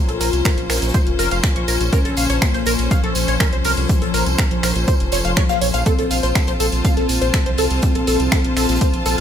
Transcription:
Already playing: F3 C#4 F4 A#4 C5
0.08 A#1 A4, closed hi-hat
0.21 A#1 A#4, open hi-hat, tambourine, shaker
0.33 C2, closed hi-hat, tambourine
0.45 A#4, finger snap, kick, snare, closed hi-hat, tambourine, shaker
0.58 A#1, closed hi-hat
0.70 A#1 A#4, finger snap, snare, open hi-hat, tambourine, shaker
0.76 snare, shaker
0.82 A#1, snare, closed hi-hat, tambourine, shaker
0.88 snare, shaker
0.94 C5, kick, closed hi-hat, tambourine, shaker
1.07 F1, closed hi-hat
1.19 F1 A#4, open hi-hat, tambourine, shaker
1.31 F1 F5, closed hi-hat, tambourine
1.44 finger snap, kick, snare, closed hi-hat, shaker
1.56 A#1 C#6, closed hi-hat
1.68 A#1 A#4, open hi-hat, tambourine, shaker
1.81 A#1, closed hi-hat, tambourine
1.93 C#4 A4 A#4, kick, closed hi-hat, shaker
2.05 A#1 A4, closed hi-hat
2.17 A#1 F5, open hi-hat, tambourine, shaker
2.29 A#1 C#5, closed hi-hat, tambourine
2.42 A#3, finger snap, kick, snare, closed hi-hat, tambourine, shaker
2.54 A#1 C5, closed hi-hat
2.66 A#1 A#4, open hi-hat, tambourine, shaker
2.78 A#1, closed hi-hat, tambourine
2.91 F3 F5, kick, closed hi-hat, tambourine, shaker
3.04 A#1 A4, snare, closed hi-hat
3.15 A#1, snare, open hi-hat, tambourine, shaker
3.28 A#1 C#5, closed hi-hat, tambourine
3.40 A#4, finger snap, kick, snare, closed hi-hat, shaker
3.53 C2 C5, closed hi-hat
3.64 C2 A#4, open hi-hat, tambourine
3.77 C2, closed hi-hat, tambourine
3.89 kick, closed hi-hat, tambourine, shaker
4.02 A#1 A4, closed hi-hat
4.14 A#1 A#4, open hi-hat, tambourine, shaker
4.26 C2, closed hi-hat, tambourine
4.38 A#4, finger snap, kick, snare, closed hi-hat, tambourine, shaker
4.51 A#1, closed hi-hat
4.63 A#1 A#4, finger snap, open hi-hat, tambourine, shaker
4.76 A#1, closed hi-hat, tambourine
4.88 C5, kick, closed hi-hat, tambourine, shaker
5.00 F1, closed hi-hat
5.12 F1 C#5, snare, open hi-hat, tambourine, shaker
5.25 F1 F5, closed hi-hat, tambourine
5.37 C#5, finger snap, kick, closed hi-hat, shaker
5.49 A#1 F5, snare, closed hi-hat, shaker
5.61 A#1 C#5, closed hi-hat, open hi-hat, tambourine
5.74 A#1 F5, closed hi-hat, tambourine, shaker
5.86 C4 F4 A4, kick, closed hi-hat, shaker
5.99 A#1 A4, closed hi-hat
6.11 A#1 F5, open hi-hat, tambourine, shaker
6.23 A#1 C5, closed hi-hat, tambourine
6.35 C4, finger snap, kick, snare, closed hi-hat, tambourine, shaker
6.40 A5
6.47 A#1 C5, closed hi-hat
6.60 A#1 A4, open hi-hat, tambourine, shaker
6.72 A#1, closed hi-hat, tambourine
6.84 C4 F5, kick, closed hi-hat, tambourine, shaker
6.97 A#1 A4, snare, closed hi-hat
7.09 A#1, snare, open hi-hat, tambourine, shaker
7.22 A#1 C5, closed hi-hat, tambourine
7.34 A4, finger snap, kick, snare, closed hi-hat, tambourine, shaker
7.46 C2 C5, closed hi-hat
7.57 C2 A4, open hi-hat, tambourine
7.70 C2, closed hi-hat, tambourine
7.82 kick, closed hi-hat, tambourine, shaker
7.95 A#1 A4, closed hi-hat
8.07 A#1 A4, open hi-hat, tambourine, shaker
8.19 C2, closed hi-hat, tambourine
8.32 A4, finger snap, kick, snare, closed hi-hat, tambourine, shaker
8.44 A#1, closed hi-hat
8.57 A#1 A4, finger snap, snare, open hi-hat, tambourine, shaker
8.63 snare, shaker
8.69 A#1, snare, closed hi-hat, tambourine, shaker
8.76 snare, shaker
8.81 C5, kick, closed hi-hat, tambourine, shaker
8.94 A#1, closed hi-hat
9.06 A#1 A4, open hi-hat, tambourine, shaker

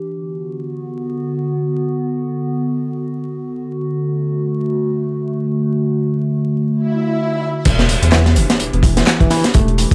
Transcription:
0.10 D3 B3 F#4
3.88 A3
6.71 swell
7.65 E1 E3 D4 G4, kick, closed hi-hat, crash, impact
7.79 snare, closed hi-hat
7.89 closed hi-hat, open hi-hat
8.02 E2 E3, closed hi-hat
8.12 E3, snare, clap, closed hi-hat
8.26 snare, closed hi-hat
8.36 E1 E3, closed hi-hat, open hi-hat
8.50 snare, closed hi-hat
8.60 E1, closed hi-hat
8.73 E1 B3, closed hi-hat
8.83 E3, kick, closed hi-hat, open hi-hat
8.97 E3, snare, closed hi-hat
9.07 snare, clap, closed hi-hat
9.20 E1 E3, kick, closed hi-hat
9.30 E3, snare, open hi-hat
9.44 B3, snare, closed hi-hat
9.54 E1 A3, kick, closed hi-hat
9.68 closed hi-hat
9.78 closed hi-hat, open hi-hat
9.91 E2, kick

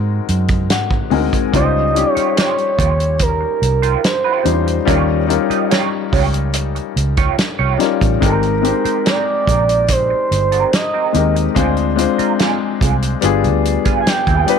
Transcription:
Already playing: G#2 G#3 C4 D#4 F#4 A#4
0.28 F#2, closed hi-hat
0.48 kick, closed hi-hat
0.70 G#2 F#5, snare, closed hi-hat
0.91 kick
1.10 D2 G#3 C4 D#4 F#4 A#4 G#5, open hi-hat
1.33 kick, closed hi-hat
1.52 C#2 G3 C#4 D#4 F4 G4 C5 D#5, kick, closed hi-hat
1.75 muted clean electric guitar stroke
1.93 G3 C#4 D#4 F4 G4, muted clean electric guitar stroke, closed hi-hat
2.12 G4 C#5
2.16 F4, muted fingered electric bass stroke, closed hi-hat
2.36 F4 G4 C5 C#5, snare, closed hi-hat
2.57 muted clean electric guitar stroke, closed hi-hat
2.78 D#2 F4 G4 C5, kick, closed hi-hat
2.99 muted clean electric guitar stroke, closed hi-hat
3.19 A#4, muted clean electric guitar stroke, kick, closed hi-hat
3.41 muted clean electric guitar stroke
3.62 C2, closed hi-hat
3.82 F4 G4 C5, closed hi-hat
4.04 C5, muted clean electric guitar stroke, snare, closed hi-hat
4.24 F4 G4 C5
4.43 E2 G3 C#4 D#4 F4 C5, muted clean electric guitar stroke, closed hi-hat
4.66 muted clean electric guitar stroke, closed hi-hat
4.85 D#2 G3 C#4 D#4 F4 G4 A#4 C#5, kick, closed hi-hat
5.08 muted clean electric guitar stroke
5.27 G3 C#4 D#4 F4 A#4, muted clean electric guitar stroke, closed hi-hat
5.50 F4 G4 D#5, muted fingered electric bass stroke, closed hi-hat
5.70 F4 G4 C#5, snare, closed hi-hat
5.91 muted clean electric guitar stroke
6.12 C#2 F4 G4 C#5, kick, open hi-hat
6.33 muted clean electric guitar stroke, closed hi-hat
6.53 muted clean electric guitar stroke, closed hi-hat
6.75 muted clean electric guitar stroke, closed hi-hat
6.96 C#2, closed hi-hat
7.17 F4 G4 C#5, kick, closed hi-hat
7.38 muted fingered electric bass stroke, muted clean electric guitar stroke, snare, closed hi-hat
7.59 C2 F4 G4 C#5
7.78 G3 C#4 D#4 F4 A#4, muted clean electric guitar stroke, snare, closed hi-hat
8.01 A1, muted clean electric guitar stroke, kick, closed hi-hat
8.20 G#1 G#3 C4 D#4 G4 A#4, kick, closed hi-hat
8.43 muted clean electric guitar stroke, closed hi-hat
8.62 G#3 C4 D#4 G4 C5, muted clean electric guitar stroke, closed hi-hat
8.84 C4 G4 C5, muted fingered electric bass stroke, closed hi-hat
9.05 C4 G4 A#4 D5, snare, closed hi-hat
9.26 muted clean electric guitar stroke
9.47 A#1 C4 G4 A#4, kick, closed hi-hat
9.68 muted clean electric guitar stroke, closed hi-hat
9.88 C5, muted clean electric guitar stroke, kick, closed hi-hat
10.10 muted clean electric guitar stroke
10.31 G1, closed hi-hat
10.52 C4 G4 A#4, closed hi-hat
10.72 D#5, muted clean electric guitar stroke, snare, closed hi-hat
10.93 C4 G4 A#4
11.12 D#2 G#3 C4 D#4 G4 A#4, muted clean electric guitar stroke, closed hi-hat
11.35 muted clean electric guitar stroke, closed hi-hat
11.55 D2 G#3 C4 D4 F4 G#4 C5, kick, closed hi-hat
11.77 muted clean electric guitar stroke, closed hi-hat
11.96 G#3 C4 D4 F4 C5, muted clean electric guitar stroke, closed hi-hat
12.18 C4 F4 A#4, muted fingered electric bass stroke, closed hi-hat
12.39 C4 F4 G#4, snare, closed hi-hat
12.62 muted clean electric guitar stroke
12.81 C2 C4 F4 G#4, kick, closed hi-hat
13.02 muted clean electric guitar stroke, closed hi-hat
13.21 G1 G3 B3 D4 F4 G#4, muted clean electric guitar stroke, closed hi-hat
13.44 D2, muted clean electric guitar stroke, closed hi-hat
13.65 closed hi-hat
13.85 B3 F4 G#4, kick, closed hi-hat
14.01 G#5
14.06 G5, muted fingered electric bass stroke, snare, closed hi-hat
14.27 D#2 B3 F4 G#4, kick, closed hi-hat
14.46 G3 B3 D4 F4 B4, muted clean electric guitar stroke, closed hi-hat

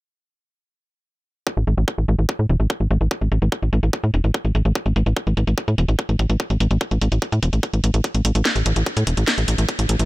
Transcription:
1.47 kick
1.57 A1, closed hi-hat
1.67 A1, closed hi-hat
1.77 A1, closed hi-hat
1.88 kick
1.98 A1, closed hi-hat
2.08 A1, closed hi-hat
2.19 A1, closed hi-hat
2.29 kick
2.39 A2, closed hi-hat
2.49 E1, closed hi-hat
2.60 A1, closed hi-hat
2.70 kick
2.80 A1, closed hi-hat
2.91 A1, closed hi-hat
3.01 A1, closed hi-hat
3.11 kick, closed hi-hat
3.21 A1, closed hi-hat
3.32 A1, closed hi-hat
3.42 A1, closed hi-hat
3.52 kick, closed hi-hat
3.62 A1, closed hi-hat
3.73 A1, closed hi-hat
3.83 A1, closed hi-hat
3.93 kick, closed hi-hat
4.04 A2, closed hi-hat
4.14 E1, closed hi-hat
4.24 A1, closed hi-hat
4.34 kick, closed hi-hat
4.45 A1, closed hi-hat
4.55 A1, closed hi-hat
4.65 A1, closed hi-hat
4.75 kick, closed hi-hat
4.86 A1, closed hi-hat
4.96 A1, closed hi-hat
5.06 A1, closed hi-hat
5.17 kick, closed hi-hat
5.27 A1, closed hi-hat
5.37 A1, closed hi-hat
5.47 A1, closed hi-hat
5.58 kick, closed hi-hat
5.68 A2, closed hi-hat
5.78 E1, closed hi-hat
5.88 A1, closed hi-hat
5.99 kick, closed hi-hat
6.09 A1, closed hi-hat
6.19 A1, closed hi-hat
6.30 A1, closed hi-hat
6.40 kick, closed hi-hat
6.50 A1, closed hi-hat
6.60 A1, closed hi-hat
6.71 A1, closed hi-hat
6.81 kick, closed hi-hat
6.91 A1, closed hi-hat
7.01 A1, closed hi-hat
7.12 A1, closed hi-hat
7.22 kick, closed hi-hat
7.32 A2, closed hi-hat
7.43 E1, closed hi-hat
7.53 A1, closed hi-hat
7.63 kick, closed hi-hat
7.73 A1, closed hi-hat
7.84 A1, closed hi-hat
7.94 A1, closed hi-hat
8.04 kick, closed hi-hat
8.14 A1, closed hi-hat
8.25 A1, closed hi-hat
8.35 A1, closed hi-hat
8.45 kick, snare, closed hi-hat
8.56 A1, closed hi-hat
8.66 A1, closed hi-hat
8.76 A1, closed hi-hat
8.86 kick, closed hi-hat
8.97 A2, closed hi-hat
9.07 E1, closed hi-hat
9.17 A1, closed hi-hat
9.28 kick, snare, closed hi-hat
9.38 A1, closed hi-hat
9.48 A1, closed hi-hat
9.58 A1, closed hi-hat
9.69 kick, closed hi-hat
9.79 A1, closed hi-hat
9.89 A1, closed hi-hat
9.99 A1, closed hi-hat

